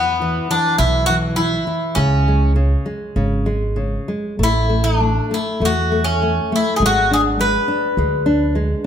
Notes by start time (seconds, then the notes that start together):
Already playing: E2 E3 B3
0.22 E3
0.50 E3 D4
0.78 B1 E3 E4
1.06 E3 F#4
1.36 E3 E4
1.67 E3
1.95 C#2 C#3 C#4
2.28 G#3
2.56 C#3
2.86 G#3
3.16 G#1 C#3
3.46 G#3
3.76 C#3
4.08 G#3
4.39 A1 A3
4.43 E4
4.70 A3
4.84 D4
5.00 A3
5.31 A3 E4
5.60 E2 A3
5.65 F#4
5.92 A3
6.04 C#4
6.22 A3
6.52 A3 E4
6.76 G#1 G#4
6.82 G#3 F#4
7.11 D4 G#4
7.39 G#3 B4
7.68 D4
7.97 D2 G#3
8.26 D4
8.55 G#3